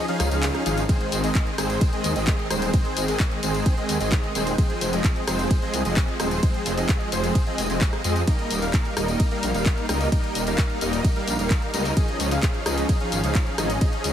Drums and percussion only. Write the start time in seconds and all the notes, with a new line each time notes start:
0.08 closed hi-hat
0.20 cross-stick, open hi-hat, tambourine
0.31 closed hi-hat, tambourine
0.43 clap, closed hi-hat, ride, tambourine
0.54 cross-stick, closed hi-hat
0.66 open hi-hat, tambourine
0.78 closed hi-hat, tambourine
0.89 kick, closed hi-hat, ride, tambourine
1.01 closed hi-hat
1.12 open hi-hat, tambourine
1.24 closed hi-hat, tambourine
1.35 kick, clap, closed hi-hat, ride, tambourine
1.47 closed hi-hat
1.58 cross-stick, open hi-hat, tambourine
1.70 closed hi-hat, tambourine
1.81 kick, closed hi-hat, ride, tambourine
1.93 closed hi-hat
2.04 open hi-hat, tambourine
2.16 closed hi-hat, tambourine
2.27 kick, clap, closed hi-hat, ride
2.39 closed hi-hat
2.50 cross-stick, open hi-hat, tambourine
2.62 closed hi-hat, tambourine
2.74 kick, closed hi-hat, ride, tambourine
2.85 closed hi-hat
2.97 open hi-hat, tambourine
3.08 closed hi-hat, tambourine
3.20 kick, clap, closed hi-hat, ride
3.31 closed hi-hat
3.43 open hi-hat, tambourine
3.54 closed hi-hat, tambourine
3.66 kick, closed hi-hat, ride, tambourine
3.77 closed hi-hat
3.89 open hi-hat, tambourine
4.01 closed hi-hat, tambourine
4.12 kick, clap, closed hi-hat, ride
4.24 closed hi-hat
4.35 open hi-hat, tambourine
4.47 closed hi-hat, tambourine
4.58 kick, closed hi-hat, ride, tambourine
4.70 closed hi-hat
4.81 open hi-hat, tambourine
4.93 closed hi-hat, tambourine
5.04 kick, clap, closed hi-hat, ride, tambourine
5.16 closed hi-hat
5.28 cross-stick, open hi-hat, tambourine
5.39 closed hi-hat, tambourine
5.51 kick, closed hi-hat, ride, tambourine
5.62 closed hi-hat
5.74 open hi-hat, tambourine
5.85 closed hi-hat, tambourine
5.97 kick, clap, closed hi-hat, ride
6.08 closed hi-hat
6.20 cross-stick, open hi-hat, tambourine
6.31 closed hi-hat, tambourine
6.43 kick, closed hi-hat, ride, tambourine
6.54 closed hi-hat
6.66 open hi-hat, tambourine
6.78 closed hi-hat, tambourine
6.89 kick, clap, closed hi-hat, ride, tambourine
7.01 closed hi-hat
7.12 open hi-hat, tambourine
7.24 closed hi-hat, tambourine
7.35 kick, closed hi-hat, ride, tambourine
7.47 closed hi-hat
7.58 open hi-hat, tambourine
7.70 closed hi-hat, tambourine
7.81 kick, clap, closed hi-hat, ride
7.93 cross-stick, closed hi-hat
8.04 open hi-hat, tambourine
8.16 closed hi-hat, tambourine
8.27 kick, closed hi-hat, ride, tambourine
8.39 closed hi-hat
8.51 open hi-hat, tambourine
8.62 closed hi-hat, tambourine
8.74 kick, clap, closed hi-hat, ride, tambourine
8.85 closed hi-hat
8.97 cross-stick, open hi-hat, tambourine
9.08 closed hi-hat, tambourine
9.20 kick, closed hi-hat, ride, tambourine
9.31 closed hi-hat
9.43 open hi-hat, tambourine
9.54 closed hi-hat, tambourine
9.66 kick, clap, closed hi-hat, ride
9.78 closed hi-hat
9.89 cross-stick, open hi-hat, tambourine
10.01 closed hi-hat, tambourine
10.12 kick, closed hi-hat, ride, tambourine
10.24 closed hi-hat
10.35 open hi-hat, tambourine
10.47 closed hi-hat, tambourine
10.58 kick, clap, closed hi-hat, ride
10.70 closed hi-hat
10.81 open hi-hat, tambourine
10.93 closed hi-hat, tambourine
11.04 kick, closed hi-hat, ride, tambourine
11.16 closed hi-hat
11.28 open hi-hat, tambourine
11.39 closed hi-hat, tambourine
11.50 kick, clap, closed hi-hat, ride
11.62 closed hi-hat
11.74 open hi-hat, tambourine
11.85 closed hi-hat, tambourine
11.97 kick, closed hi-hat, ride, tambourine
12.08 closed hi-hat
12.20 open hi-hat, tambourine
12.31 closed hi-hat, tambourine
12.43 kick, clap, closed hi-hat, ride, tambourine
12.54 closed hi-hat
12.66 cross-stick, open hi-hat, tambourine
12.78 closed hi-hat, tambourine
12.89 kick, closed hi-hat, ride, tambourine
13.01 closed hi-hat
13.12 open hi-hat, tambourine
13.24 closed hi-hat, tambourine
13.35 kick, clap, closed hi-hat, ride, tambourine
13.47 closed hi-hat
13.58 cross-stick, open hi-hat, tambourine
13.70 closed hi-hat, tambourine
13.81 kick, closed hi-hat, ride, tambourine
13.93 closed hi-hat
14.04 open hi-hat, tambourine